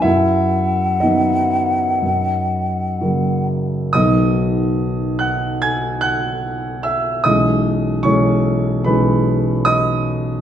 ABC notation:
X:1
M:4/4
L:1/8
Q:1/4=72
K:B
V:1 name="Flute"
f6- f z | z8 | z8 |]
V:2 name="Grand piano"
[Ee]2 [Dd]4- [Dd] z | [dd']3 [ff'] [gg'] [ff']2 [ee'] | [dd']2 [cc']2 [Bb]2 [dd']2 |]
V:3 name="Grand piano" clef=bass
F,,2 [D,F,B,]2 F,,2 [C,F,A,]2 | [B,,,D,F,B,]8 | [B,,,E,G,C]2 [B,,,E,G,C]2 [B,,,E,G,C]4 |]